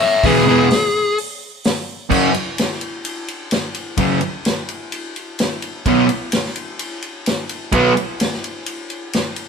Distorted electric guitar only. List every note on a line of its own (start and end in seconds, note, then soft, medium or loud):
0.25 0.43 E2 medium
0.25 0.43 B2 medium
0.25 0.43 E3 loud
0.48 0.66 E2 medium
0.48 0.67 B2 medium
0.48 0.67 E3 loud
2.10 2.29 F#2 medium
2.10 2.29 C#3 medium
2.10 2.30 F#3 medium
3.97 4.17 F#2 medium
3.97 4.17 C#3 medium
3.97 4.17 F#3 loud
5.87 6.05 B2 medium
5.87 6.06 F#3 loud
5.87 6.06 B3 medium
7.72 7.92 B2 medium
7.72 7.92 F#3 medium
7.72 7.92 B3 loud